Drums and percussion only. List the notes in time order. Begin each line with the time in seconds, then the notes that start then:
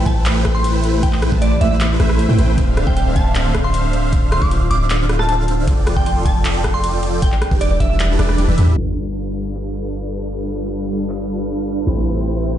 0.06 kick, closed hi-hat
0.26 clap, closed hi-hat, ride
0.45 kick, cross-stick, closed hi-hat
0.64 closed hi-hat
0.84 closed hi-hat
1.03 kick, closed hi-hat, ride
1.13 clap
1.22 cross-stick, closed hi-hat
1.32 kick
1.42 closed hi-hat
1.61 closed hi-hat
1.80 clap, closed hi-hat, ride
2.00 cross-stick, closed hi-hat
2.10 cross-stick
2.19 closed hi-hat
2.39 closed hi-hat
2.58 kick, closed hi-hat, ride
2.77 cross-stick, closed hi-hat
2.87 kick
2.97 closed hi-hat
3.16 kick, closed hi-hat
3.35 clap, closed hi-hat, ride
3.55 kick, cross-stick, closed hi-hat
3.74 closed hi-hat
3.93 closed hi-hat
4.13 kick, closed hi-hat, ride
4.32 cross-stick, closed hi-hat
4.42 kick
4.51 closed hi-hat
4.71 closed hi-hat
4.90 clap, closed hi-hat, ride
5.09 cross-stick, closed hi-hat
5.19 cross-stick
5.29 closed hi-hat
5.48 closed hi-hat
5.67 kick, closed hi-hat, ride
5.87 cross-stick, closed hi-hat
5.97 kick
6.06 closed hi-hat
6.26 kick, closed hi-hat
6.45 clap, closed hi-hat, ride
6.64 kick, cross-stick, closed hi-hat
6.84 closed hi-hat
7.03 closed hi-hat
7.22 kick, closed hi-hat, ride
7.32 clap
7.42 cross-stick, closed hi-hat
7.51 kick
7.61 closed hi-hat
7.80 kick, closed hi-hat
8.00 clap, closed hi-hat, ride
8.19 cross-stick, closed hi-hat
8.29 cross-stick
8.38 closed hi-hat, high tom
8.48 high tom
8.58 closed hi-hat
8.67 mid tom
8.77 closed hi-hat, crash
9.16 closed hi-hat
9.54 clap
9.74 closed hi-hat
9.93 closed hi-hat
10.13 closed hi-hat
10.32 closed hi-hat
10.51 closed hi-hat
10.71 closed hi-hat
10.90 closed hi-hat
11.09 clap
11.29 closed hi-hat
11.48 closed hi-hat
11.67 closed hi-hat
11.87 closed hi-hat
12.06 closed hi-hat
12.26 closed hi-hat
12.45 closed hi-hat